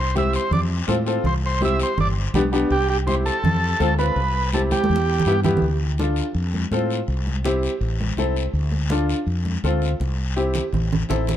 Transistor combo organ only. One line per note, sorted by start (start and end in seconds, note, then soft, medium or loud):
0.00 0.15 C5 medium
0.18 0.34 E5 medium
0.36 0.52 C5 medium
0.53 0.61 D5 medium
1.26 1.34 C5 medium
1.46 1.62 C5 medium
1.65 1.80 E5 loud
1.83 1.98 C5 medium
2.01 2.08 D5 medium
2.72 2.88 G4 loud
2.90 2.98 G4 medium
3.07 3.15 C5 medium
3.26 3.94 A4 loud
3.99 4.49 B4 loud
4.54 4.62 A4 medium
4.72 5.41 G4 medium